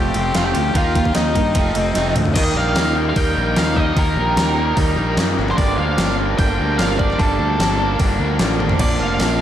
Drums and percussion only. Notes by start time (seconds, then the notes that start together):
0.14 ride
0.35 snare, ride
0.55 ride
0.75 kick, ride
0.95 kick, ride
1.05 kick
1.15 snare, ride
1.35 kick, ride
1.55 kick, ride
1.75 ride
1.95 snare, ride
2.16 mid tom, ride
2.25 floor tom
2.35 kick, open hi-hat, crash
2.76 snare, open hi-hat
3.16 kick, open hi-hat
3.56 snare, open hi-hat
3.77 kick, snare
3.97 kick, open hi-hat
4.37 snare, open hi-hat
4.77 kick, open hi-hat
5.17 snare, open hi-hat
5.39 snare
5.48 snare
5.58 kick, open hi-hat
5.98 snare, open hi-hat
6.39 kick, open hi-hat
6.79 snare, open hi-hat
6.99 kick
7.10 snare
7.19 kick, open hi-hat
7.60 snare, open hi-hat
7.99 kick, open hi-hat
8.39 snare, open hi-hat
8.60 high tom
8.70 floor tom
8.79 kick, crash
9.20 snare, open hi-hat